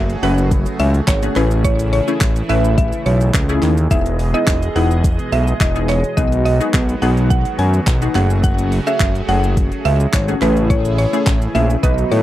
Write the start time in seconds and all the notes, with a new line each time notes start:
Already playing: F#1 C#3 F#3 A3 F#4 G#4
0.10 closed hi-hat, shaker
0.23 F#1 A3 C#4 F#4 B4 F#5, open hi-hat, shaker
0.38 closed hi-hat, shaker
0.51 kick, closed hi-hat, shaker
0.66 closed hi-hat, shaker
0.79 C#2 E5, open hi-hat, shaker
0.94 closed hi-hat, shaker
1.08 G#1 C#5, kick, clap, closed hi-hat, shaker
1.23 A3 C#4 F#4 G#4, closed hi-hat, shaker
1.36 A1 E3 A3 C#4 E4 G#4 B4, clap, open hi-hat, shaker
1.51 closed hi-hat, shaker
1.64 C#5, kick, closed hi-hat, shaker
1.79 closed hi-hat, shaker
1.93 C#5, open hi-hat, shaker
2.07 A3 C#4 E4 G#4, closed hi-hat, shaker
2.21 A1, kick, clap, closed hi-hat, shaker
2.36 closed hi-hat, shaker
2.49 A1 A3 C#4 E4 B4 E5, open hi-hat, shaker
2.64 closed hi-hat, shaker
2.78 E5, kick, closed hi-hat, shaker
2.92 closed hi-hat, shaker
3.06 B1 C#5, open hi-hat, shaker
3.21 closed hi-hat, shaker
3.34 C#2, kick, clap, closed hi-hat, shaker
3.49 A3 C#4 E4 G#4, closed hi-hat, shaker
3.62 D#2, clap, open hi-hat, shaker
3.77 closed hi-hat, shaker
3.91 E1 B2 G#3 B3 D#4 E4 G#4 D#5 E5, kick, closed hi-hat, shaker
4.06 closed hi-hat, shaker
4.19 open hi-hat, shaker
4.34 B3 D#4 E4 G#4 D#5, closed hi-hat, shaker
4.47 E1, kick, clap, closed hi-hat, shaker
4.62 closed hi-hat, shaker
4.75 E1 B3 D#4 E4 G#4 F#5, open hi-hat, shaker
4.91 closed hi-hat, shaker
5.04 kick, closed hi-hat, shaker
5.19 closed hi-hat, shaker
5.32 B1 E5, open hi-hat, shaker
5.47 closed hi-hat, shaker
5.61 E1 D#5, kick, clap, closed hi-hat, shaker
5.75 B3 D#4 E4 G#4, closed hi-hat, shaker
5.89 C#5, clap, open hi-hat, shaker
6.04 closed hi-hat, shaker
6.17 B1 D#3 F#3 B3 D#4 F#4 G#4 D#5, kick, closed hi-hat, shaker
6.32 closed hi-hat, shaker
6.45 D#5, open hi-hat, shaker
6.60 B3 D#4 F#4 G#4, closed hi-hat, shaker
6.74 B1, kick, clap, closed hi-hat, shaker
6.89 closed hi-hat, shaker
7.02 B1 B3 D#4 F#4 G#4 F#5, open hi-hat, shaker
7.17 closed hi-hat, shaker
7.30 F#5, kick, closed hi-hat, shaker
7.45 closed hi-hat, shaker
7.59 F#2 G#5, open hi-hat, shaker
7.74 closed hi-hat, shaker
7.87 B1, kick, clap, closed hi-hat, shaker
8.02 B3 D#4 F#4 G#4, closed hi-hat, shaker
8.15 F#1 C#3 A3 C#4 F#4 G#4 F#5, clap, open hi-hat, shaker
8.30 closed hi-hat, shaker
8.44 F#5, kick, closed hi-hat, shaker
8.58 closed hi-hat, shaker
8.72 open hi-hat, shaker
8.87 A3 C#4 F#4 G#4 E5, closed hi-hat, shaker
9.00 F#1, kick, clap, closed hi-hat, shaker
9.15 closed hi-hat, shaker
9.28 F#1 A3 C#4 F#4 G#4 F#5, open hi-hat, shaker
9.44 closed hi-hat, shaker
9.57 kick, closed hi-hat, shaker
9.72 closed hi-hat, shaker
9.85 C#2 E5, open hi-hat, shaker
10.00 closed hi-hat, shaker
10.13 G#1 C#5, kick, clap, closed hi-hat, shaker
10.28 A3 C#4 F#4 G#4, closed hi-hat, shaker
10.41 A1 C#3 E3 A3 C#4 E4 G#4 B4, clap, open hi-hat, shaker
10.57 closed hi-hat, shaker
10.70 C#5, kick, closed hi-hat, shaker
10.85 closed hi-hat, shaker
10.98 C#5, open hi-hat, shaker
11.13 A3 C#4 E4 G#4, closed hi-hat, shaker
11.27 A1, kick, clap, closed hi-hat, shaker
11.42 closed hi-hat, shaker
11.55 A#1 A3 C#4 E4 G#4 E5, open hi-hat, shaker
11.70 closed hi-hat, shaker
11.83 B1 B2 D#3 F#3 B3 D#4 F#4 B4 D#5, kick, closed hi-hat, shaker
11.98 closed hi-hat, shaker
12.12 A2 C#5, open hi-hat, shaker